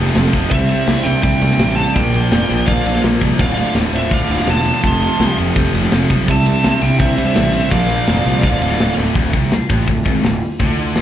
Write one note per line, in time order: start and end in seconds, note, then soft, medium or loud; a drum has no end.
0.00 0.13 F2 medium
0.00 0.14 C3 loud
0.00 0.15 F3 medium
0.00 0.50 F3 medium
0.00 0.50 C4 medium
0.00 0.50 G4 medium
0.00 0.50 A4 medium
0.07 snare soft
0.15 0.26 F1 loud
0.15 0.32 F2 medium
0.15 0.33 C3 medium
0.15 0.33 F3 medium
0.15 snare loud
0.15 ride loud
0.25 snare soft
0.33 0.44 F1 medium
0.33 0.50 F2 medium
0.33 0.50 C3 medium
0.33 0.51 F3 loud
0.33 kick medium
0.33 ride medium
0.50 0.73 C2 loud
0.50 1.94 C3 medium
0.50 0.68 C3 loud
0.50 1.94 G3 medium
0.50 0.68 G3 loud
0.50 0.69 C4 loud
0.50 1.94 D4 medium
0.50 1.94 E4 medium
0.50 1.01 C5 medium
0.50 1.07 E5 medium
0.50 kick loud
0.50 ride loud
0.69 0.86 C3 medium
0.69 0.87 G3 medium
0.69 0.87 C4 medium
0.69 ride medium
0.87 0.99 C2 medium
0.87 1.03 C3 medium
0.87 1.04 G3 medium
0.87 1.05 C4 loud
0.87 snare loud
0.87 ride loud
1.03 1.17 C2 loud
1.03 1.22 C3 loud
1.03 1.23 G3 loud
1.03 1.23 C4 loud
1.03 1.22 E5 medium
1.03 1.22 G5 medium
1.03 ride medium
1.23 1.34 C2 medium
1.23 1.41 C3 medium
1.23 1.41 G3 loud
1.23 1.42 C4 loud
1.23 1.73 E5 medium
1.23 1.76 G5 loud
1.23 kick loud
1.23 ride loud
1.42 1.53 C2 loud
1.42 1.58 C3 loud
1.42 1.59 G3 loud
1.42 1.60 C4 loud
1.42 ride medium
1.51 snare soft
1.59 1.81 A1 loud
1.59 1.77 C3 medium
1.59 1.77 G3 medium
1.59 1.78 C4 medium
1.59 snare loud
1.59 ride loud
1.69 snare soft
1.76 1.94 C3 medium
1.76 1.95 G3 medium
1.76 1.95 C4 loud
1.76 1.94 F5 medium
1.76 1.94 A5 loud
1.76 ride medium
1.94 2.18 A#1 medium
1.94 2.12 A#2 medium
1.94 2.13 F3 loud
1.94 3.38 A#3 medium
1.94 2.13 A#3 loud
1.94 3.38 F4 medium
1.94 3.38 C5 medium
1.94 2.66 D5 medium
1.94 3.38 D5 medium
1.94 2.69 G5 loud
1.94 kick loud
1.94 ride loud
2.13 2.30 A#2 medium
2.13 2.32 F3 medium
2.13 2.32 A#3 medium
2.13 ride medium
2.32 2.43 F1 loud
2.32 2.48 A#2 medium
2.32 2.50 F3 loud
2.32 2.49 A#3 loud
2.32 snare loud
2.32 ride loud
2.49 2.61 A#1 loud
2.49 2.66 A#2 loud
2.49 2.68 F3 loud
2.49 2.68 A#3 loud
2.49 ride medium
2.66 2.78 A#1 medium
2.66 2.84 A#2 medium
2.66 2.85 F3 medium
2.66 2.85 A#3 medium
2.66 3.01 D5 medium
2.66 3.00 F5 medium
2.66 kick loud
2.66 ride loud
2.85 2.96 A#1 loud
2.85 3.02 A#2 medium
2.85 3.03 F3 medium
2.85 3.03 A#3 loud
2.85 ride medium
2.95 snare soft
3.03 3.15 A#1 loud
3.03 3.20 A#2 medium
3.03 3.21 F3 medium
3.03 3.21 A#3 medium
3.03 snare loud
3.03 ride loud
3.13 snare soft
3.21 3.33 C2 medium
3.21 3.38 A#2 medium
3.21 3.39 F3 medium
3.21 3.39 A#3 loud
3.21 kick medium
3.21 ride medium
3.39 3.62 D1 loud
3.39 3.56 D2 loud
3.39 3.57 A2 loud
3.39 4.82 D3 medium
3.39 3.57 D3 loud
3.39 4.82 A3 medium
3.39 4.83 D4 medium
3.39 4.82 F4 medium
3.39 3.73 D5 medium
3.39 3.74 F5 loud
3.39 kick loud
3.39 crash loud
3.57 3.73 D2 medium
3.57 3.75 A2 medium
3.57 3.75 D3 loud
3.57 ride medium
3.75 3.86 D1 loud
3.75 3.92 D2 medium
3.75 3.93 A2 loud
3.75 3.93 D3 loud
3.75 snare loud
3.75 ride loud
3.93 4.04 D1 medium
3.93 4.10 D2 loud
3.93 4.10 A2 loud
3.93 4.11 D3 loud
3.93 4.12 C5 medium
3.93 4.13 E5 medium
3.93 ride medium
4.11 4.22 D1 medium
4.11 4.28 D2 medium
4.11 4.29 A2 medium
4.11 4.30 D3 loud
4.11 4.48 D5 medium
4.11 4.50 F5 medium
4.11 kick loud
4.11 ride loud
4.29 4.41 D1 loud
4.29 4.46 D2 medium
4.29 4.47 A2 loud
4.29 4.47 D3 loud
4.29 ride medium
4.39 snare soft
4.47 4.69 E1 loud
4.47 4.64 D2 medium
4.47 4.65 A2 medium
4.47 4.66 D3 medium
4.47 4.81 F5 medium
4.47 4.86 A5 loud
4.47 snare loud
4.47 ride loud
4.57 snare soft
4.65 4.82 D2 medium
4.65 4.83 A2 medium
4.65 4.83 D3 medium
4.65 ride medium
4.84 5.05 F1 loud
4.84 5.00 F2 loud
4.84 5.01 C3 loud
4.84 6.27 F3 medium
4.84 5.01 F3 loud
4.84 6.26 C4 medium
4.84 6.27 G4 medium
4.84 6.27 A4 medium
4.84 5.34 A5 medium
4.84 5.36 C6 loud
4.84 kick loud
4.84 ride loud
5.01 5.18 F2 medium
5.01 5.19 C3 loud
5.01 5.19 F3 medium
5.01 ride medium
5.19 5.31 C2 medium
5.19 5.36 F2 loud
5.19 5.37 C3 medium
5.19 5.37 F3 loud
5.19 snare loud
5.19 ride loud
5.37 5.49 F1 medium
5.37 5.54 F2 medium
5.37 5.55 C3 loud
5.37 5.55 F3 loud
5.37 ride medium
5.55 5.67 F1 medium
5.55 5.72 F2 medium
5.55 5.73 C3 medium
5.55 5.73 F3 loud
5.55 kick loud
5.55 ride loud
5.73 5.85 F1 medium
5.73 5.90 F2 loud
5.73 5.91 C3 medium
5.73 5.92 F3 loud
5.73 ride medium
5.84 snare soft
5.91 6.03 F1 loud
5.91 6.08 F2 medium
5.91 6.09 C3 medium
5.91 6.09 F3 medium
5.91 snare loud
5.91 ride loud
6.09 6.21 B1 loud
6.09 6.26 F2 medium
6.09 6.27 C3 loud
6.09 6.27 F3 loud
6.09 kick medium
6.09 ride medium
6.28 6.50 C2 loud
6.28 6.45 C3 loud
6.28 7.71 C3 medium
6.28 7.70 G3 medium
6.28 6.46 G3 loud
6.28 6.46 C4 loud
6.28 7.71 D4 medium
6.28 7.71 E4 medium
6.28 6.79 E5 medium
6.28 6.85 A5 loud
6.28 kick loud
6.28 ride loud
6.46 6.63 C3 medium
6.46 6.63 G3 medium
6.46 6.64 C4 medium
6.46 ride medium
6.64 6.76 C2 medium
6.64 6.80 C3 loud
6.64 6.81 G3 medium
6.64 6.81 C4 loud
6.64 snare loud
6.64 ride loud
6.81 6.93 C2 medium
6.81 6.99 C3 loud
6.81 7.00 G3 loud
6.81 7.00 C4 loud
6.81 7.00 E5 medium
6.81 6.99 G5 loud
6.81 ride medium
6.99 7.11 C2 loud
6.99 7.17 C3 medium
6.99 7.17 G3 medium
6.99 7.18 C4 loud
6.99 7.25 C5 medium
6.99 7.26 E5 loud
6.99 kick loud
6.99 ride loud
7.18 7.29 C2 medium
7.18 7.34 C3 loud
7.18 7.36 G3 loud
7.18 7.36 C4 loud
7.18 ride medium
7.26 7.68 C5 medium
7.26 7.71 E5 medium
7.36 7.58 A1 loud
7.36 7.52 C3 medium
7.36 7.53 G3 medium
7.36 7.54 C4 medium
7.36 snare loud
7.36 ride loud
7.45 snare soft
7.53 7.70 C3 medium
7.53 7.71 G3 loud
7.53 7.71 C4 loud
7.53 ride medium
7.71 7.93 A#1 loud
7.71 7.88 A#2 loud
7.71 7.89 F3 loud
7.71 8.43 A#3 medium
7.71 7.89 A#3 loud
7.71 9.14 F4 medium
7.71 8.43 C5 medium
7.71 8.40 D5 medium
7.71 8.43 D5 medium
7.71 8.41 F5 loud
7.71 kick loud
7.71 ride loud
7.89 8.05 A#2 medium
7.89 8.06 F3 medium
7.89 8.07 A#3 medium
7.89 ride medium
8.07 8.19 F1 loud
8.07 8.24 A#2 loud
8.07 8.25 F3 loud
8.07 8.25 A#3 loud
8.07 snare loud
8.07 ride loud
8.25 8.45 C2 medium
8.25 8.43 A#2 medium
8.25 8.43 F3 loud
8.25 8.43 A#3 loud
8.25 ride medium
8.42 8.55 D1 medium
8.42 8.61 D2 loud
8.42 8.62 A2 medium
8.42 9.14 D3 medium
8.42 8.62 D3 loud
8.42 9.14 A3 medium
8.42 9.15 D4 medium
8.42 8.94 D5 medium
8.42 8.93 F5 medium
8.42 kick loud
8.42 ride loud
8.62 8.73 D1 medium
8.62 8.79 D2 medium
8.62 8.79 A2 loud
8.62 8.80 D3 medium
8.62 ride medium
8.71 snare soft
8.79 8.90 D1 loud
8.79 8.97 D2 medium
8.79 8.97 A2 medium
8.79 8.98 D3 medium
8.79 snare loud
8.79 ride loud
8.90 snare soft
8.98 9.09 D1 medium
8.98 9.15 D2 medium
8.98 9.15 A2 loud
8.98 9.16 D3 loud
8.98 snare medium
9.15 9.33 D1 loud
9.15 9.34 D2 loud
9.15 11.02 D3 medium
9.15 11.02 A3 medium
9.15 11.02 E4 medium
9.15 11.02 F4 medium
9.15 kick loud
9.15 open hi-hat medium
9.33 9.50 C2 medium
9.33 9.52 C3 loud
9.33 kick loud
9.33 open hi-hat medium
9.52 muted distorted electric guitar stroke medium
9.52 muted picked electric bass stroke soft
9.52 snare loud
9.52 open hi-hat medium
9.70 9.87 A1 medium
9.70 9.87 A2 loud
9.70 kick loud
9.70 open hi-hat medium
9.88 10.05 D1 medium
9.88 10.02 D2 medium
9.88 kick loud
9.88 open hi-hat medium
10.05 10.23 G#1 loud
10.05 10.23 G#2 loud
10.05 kick loud
10.05 open hi-hat medium
10.23 10.41 D1 medium
10.23 10.38 D2 medium
10.23 snare loud
10.23 open hi-hat medium
10.42 open hi-hat medium
10.60 10.94 D2 loud
10.60 10.96 D3 loud
10.60 kick loud
10.60 open hi-hat medium
10.77 open hi-hat medium
10.95 11.02 D1 loud
10.95 11.02 D2 loud
10.95 snare loud
10.95 open hi-hat medium